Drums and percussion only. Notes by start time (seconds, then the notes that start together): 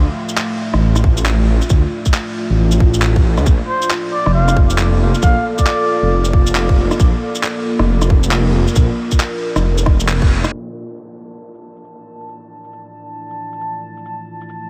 0.29 shaker
0.38 clap, shaker
0.74 cross-stick
0.96 cross-stick, shaker
1.04 kick
1.17 shaker
1.26 clap, shaker
1.62 shaker
1.70 kick, shaker
2.06 kick, shaker
2.14 clap, shaker
2.72 shaker
2.80 kick
2.94 shaker
3.02 clap, shaker
3.16 kick
3.38 cross-stick, shaker
3.46 kick, shaker
3.82 shaker
3.91 clap, shaker
4.26 cross-stick
4.48 cross-stick, shaker
4.57 kick
4.70 shaker
4.78 clap, shaker
5.15 shaker
5.22 kick, shaker
5.58 kick, shaker
5.67 clap, shaker
6.25 shaker
6.33 kick
6.47 shaker
6.55 clap, shaker
6.69 kick
6.91 cross-stick, shaker
7.00 kick, shaker
7.35 shaker
7.44 clap, shaker
7.79 cross-stick
8.02 cross-stick, shaker
8.10 kick
8.23 shaker
8.31 clap, shaker
8.68 shaker
8.76 kick, shaker
9.12 kick, shaker
9.20 clap, shaker
9.56 cross-stick, shaker
9.78 shaker
9.86 kick, cross-stick
10.00 shaker
10.09 clap, shaker
10.22 kick
10.44 cross-stick, shaker
10.88 shaker
10.97 shaker
11.55 shaker
11.76 shaker
11.84 shaker
12.21 shaker
12.29 shaker
12.64 shaker
12.73 shaker
13.30 shaker
13.52 shaker
13.61 shaker
13.97 shaker
14.05 shaker
14.41 shaker
14.49 shaker